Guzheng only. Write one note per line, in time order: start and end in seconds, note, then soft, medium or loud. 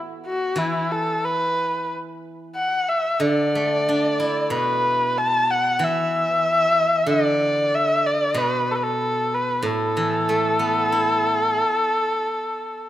0.00 0.24 B3 soft
0.56 2.54 E3 soft
3.20 4.52 D3 soft
3.55 4.86 A3 soft
3.89 5.18 D4 soft
4.20 5.49 E4 soft
4.50 5.80 B2 soft
5.79 7.71 E3 soft
7.06 8.35 D3 soft
8.34 9.64 B2 medium
9.62 11.58 A2 soft
9.97 11.26 E3 soft
10.29 11.59 A3 soft
10.59 11.91 B3 soft
10.92 12.24 E4 soft